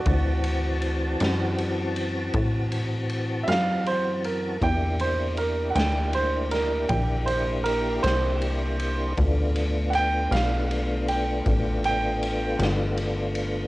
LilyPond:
<<
  \new Staff \with { instrumentName = "Upright piano" } { \time 12/8 \key d \dorian \tempo 4. = 53 <fis' d''>2~ <fis' d''>8 r2 <e'' f''>8 c''8 bes'8 | g''8 c''8 bes'8 <fis'' g''>8 c''8 bes'8 g''8 c''8 bes'8 c''4. | r4 <fis'' g''>8 f''4 g''4 g''4 r4. | }
  \new Staff \with { instrumentName = "Tonewheel organ" } { \time 12/8 \key d \dorian <e c' fis' a''>1. | <bes d' e' g'>1. | <a b d' f'>1. | }
  \new Staff \with { instrumentName = "Analog synth bass" } { \clef bass \time 12/8 \key d \dorian d,4. fis,4. a,4. fis,4. | e,4. d,4. bes,,4. c,4. | d,4. b,,4. a,,4. g,,4. | }
  \new DrumStaff \with { instrumentName = "Drums" } \drummode { \time 12/8 <bd cymr>8 cymr8 cymr8 <cymr sn>8 cymr8 cymr8 <bd cymr>8 cymr8 cymr8 <cymr sn>8 cymr8 cymr8 | <bd cymr>8 cymr8 cymr8 <cymr sn>8 cymr8 <cymr sn>8 <bd cymr>8 cymr8 cymr8 <cymr sn>8 cymr8 cymr8 | <bd cymr>8 cymr8 cymr8 <cymr sn>8 cymr8 cymr8 <bd cymr>8 cymr8 cymr8 <cymr sn>8 cymr8 cymr8 | }
>>